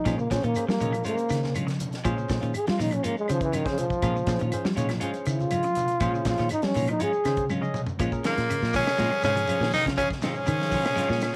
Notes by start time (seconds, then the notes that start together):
Already playing: D#4
0.05 A#2 F3 G#3 C#4 F4 G#4 C5, kick, snare, closed hi-hat, high conga, claves, shekere
0.18 C#3 A#3, muted clean electric guitar stroke, shekere
0.30 A#2 F3 C#4 G#4 C5, kick, snare, closed hi-hat, high conga, shekere
0.43 A#2 D#3 A#3 C#4 F4, closed hi-hat, shekere
0.55 C#4 G#4 C5, muted clean electric guitar stroke, closed hi-hat, high conga, claves, shekere
0.68 F3 G3 A#3, snare, high conga, shekere
0.80 A#2 D#3 G#3 C#4 F4 G#4 D#5, closed hi-hat, low conga, shekere
0.93 F3, closed hi-hat, high conga, claves, shekere
1.04 G#3 A#3 C#4 F4 G#4 C5, closed hi-hat, high conga, shekere
1.17 muted clean electric guitar stroke, closed hi-hat, shekere
1.29 C#3 D#3, muted clean electric guitar stroke, snare, closed hi-hat, claves, shekere
1.42 muted clean electric guitar stroke, snare, low conga, shekere
1.54 G#3 C#4 F4, closed hi-hat, high conga, claves, shekere
1.67 C#3, muted clean electric guitar stroke, snare, closed hi-hat, shekere
1.79 muted clean electric guitar stroke, closed hi-hat, low conga, shekere
1.92 snare, closed hi-hat, shekere
2.04 A#2 F3 G#3 C#4 F4 G#4 C5, kick, closed hi-hat, high conga, claves, shekere
2.16 C#3, muted clean electric guitar stroke, shekere
2.29 A#2 F3, kick, snare, closed hi-hat, high conga, shekere
2.41 A#2 D#3 C#4 F4, closed hi-hat, shekere
2.53 G#4, muted clean electric guitar stroke, closed hi-hat, high conga, claves, shekere
2.67 F3 G3 F4, snare, closed hi-hat, high conga, shekere
2.78 A#2 D#3 G#3 C#4 D#4 F4, open hi-hat, high conga, low conga, shekere
2.91 muted clean electric guitar stroke, closed hi-hat, high conga, claves, shekere
2.95 C#4
3.03 G#3 A#3 C#4 F4, closed hi-hat, high conga, shekere
3.17 G#3, muted clean electric guitar stroke, shekere
3.28 C#3 D#3 F3 C#4 G#4 C5, muted clean electric guitar stroke, closed hi-hat, claves, shekere
3.40 E3, muted clean electric guitar stroke, kick, closed hi-hat, shekere
3.52 D#3 G#3 C#4 F4, closed hi-hat, high conga, claves, shekere
3.65 C#3 C#4 G#4 C5, muted clean electric guitar stroke, kick, snare, closed hi-hat, shekere
3.70 C#3
3.77 F3, muted clean electric guitar stroke, closed hi-hat, low conga, shekere
3.90 kick, shekere
4.02 A#2 F3 G#3 C#4 F4 G#4 A#4, kick, closed hi-hat, high conga, claves, shekere
4.15 C#3, muted clean electric guitar stroke, shekere
4.26 A#2 F3 C#4 G#4 C5, kick, snare, closed hi-hat, high conga, shekere
4.39 A#2 D#3 C#4 F4, closed hi-hat, shekere
4.52 C#4 G#4 C5, muted clean electric guitar stroke, closed hi-hat, claves, shekere
4.65 F3 G3, snare, high conga, shekere
4.75 A#2 D#3 G#3 C#4 F4 G#4 C#5, closed hi-hat, low conga, shekere
4.89 F3, muted clean electric guitar stroke, snare, closed hi-hat, high conga, claves, shekere
5.00 G#3 C#4 F4 G#4 C5, closed hi-hat, high conga, shekere
5.13 muted clean electric guitar stroke, closed hi-hat, shekere
5.25 C#3 D#3, muted clean electric guitar stroke, closed hi-hat, claves, shekere
5.30 F4
5.39 muted clean electric guitar stroke, low conga, shekere
5.50 G#3 F4, closed hi-hat, high conga, claves, shekere
5.63 C#3, muted clean electric guitar stroke, closed hi-hat, shekere
5.75 muted clean electric guitar stroke, closed hi-hat, low conga, shekere
5.88 closed hi-hat, shekere
6.00 A#2 F3 G#3 C#4 F4 G#4 C5, kick, closed hi-hat, high conga, claves, shekere
6.14 C#3, muted clean electric guitar stroke, shekere
6.25 A#2 F3 F4, kick, snare, closed hi-hat, high conga, shekere
6.37 A#2 D#3 C#4 F4, snare, closed hi-hat, shekere
6.49 D#4, muted clean electric guitar stroke, closed hi-hat, high conga, claves, shekere
6.62 G3 C#4, snare, closed hi-hat, high conga, shekere
6.74 A#2 D#3 G#3 C#4 F4, open hi-hat, high conga, low conga, shekere
6.87 F3 D#4, muted clean electric guitar stroke, closed hi-hat, high conga, claves, shekere
6.99 G#3 C#4 F4 G#4, closed hi-hat, high conga, shekere
7.13 muted clean electric guitar stroke, shekere
7.25 C#3 D#3 C#4 G#4 C5, muted clean electric guitar stroke, snare, closed hi-hat, claves, shekere
7.36 muted clean electric guitar stroke, kick, closed hi-hat, low conga, shekere
7.50 G#3 C#4 F4, high tom, high conga, claves, shekere
7.61 C#3 C#4 G#4 D#5, shekere
7.74 muted clean electric guitar stroke, mid tom, low conga, shekere
7.87 floor tom, shekere
7.99 A#2 F3 G#3 C#4 F4 G#4 C5, kick, closed hi-hat, high conga, claves, shekere
8.12 C#4 G#4 A#4, muted clean electric guitar stroke, kick, shekere
8.24 A#2 D#3 G#3 A#3 C#4 F4, snare, closed hi-hat, high conga, shekere
8.29 F4
8.37 A#2, muted clean electric guitar stroke, snare, closed hi-hat, shekere
8.50 C#3, closed hi-hat, high conga, claves, shekere
8.61 A#2, muted clean electric guitar stroke, snare, high conga, shekere
8.73 C#3 F3 G#3 C#4, kick, open hi-hat, low conga, shekere
8.77 G#4
8.87 snare, claves, shekere
8.98 A#2 G#3 C#4 F4, snare, closed hi-hat, high conga, shekere
9.10 G3 G#4 C5, muted clean electric guitar stroke, shekere
9.23 G#2 C#3 C#4 G#4 C5, muted clean electric guitar stroke, snare, closed hi-hat, high conga, low conga, claves, shekere
9.36 F3, muted clean electric guitar stroke, closed hi-hat, shekere
9.47 G#3 C#4 F4 G#4 C5, closed hi-hat, high conga, claves, shekere
9.60 A#2 D#3, muted clean electric guitar stroke, snare, shekere
9.72 D#3 D#4 A#4, muted clean electric guitar stroke, snare, open hi-hat, high conga, low conga, shekere
9.85 C#3 C#4 F4, kick, snare, closed hi-hat, shekere
9.97 C#3 F3 C#4 G#4, kick, closed hi-hat, high conga, claves, shekere
10.10 muted clean electric guitar stroke, kick, snare, shekere
10.22 G#2 C#3 D#3 G#3 C#4 F4, snare, closed hi-hat, high conga, low conga, shekere
10.26 G#4
10.34 G#4 C5, muted clean electric guitar stroke, shekere
10.46 C#3 D#3 C#4 G#4 C5, closed hi-hat, high conga, claves, shekere
10.59 muted clean electric guitar stroke, snare, high conga, shekere
10.71 F3 G#3 C#4 F4, kick, open hi-hat, low conga, shekere
10.84 A#2, snare, claves, shekere
10.96 G#3 C#4 F4, snare, closed hi-hat, high conga, shekere
11.08 A#2 G3, muted clean electric guitar stroke, snare, shekere
11.20 muted clean electric guitar stroke, snare, closed hi-hat, high conga, claves, shekere